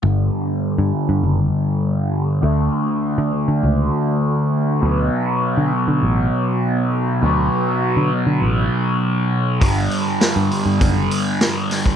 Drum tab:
HH |----------------|----------------|----------------|----------------|
SD |----------------|----------------|----------------|----------------|
BD |----------------|----------------|----------------|----------------|

HH |o-o-o-o-o-o-o-o-|
SD |----o-------o-o-|
BD |o-------o------o|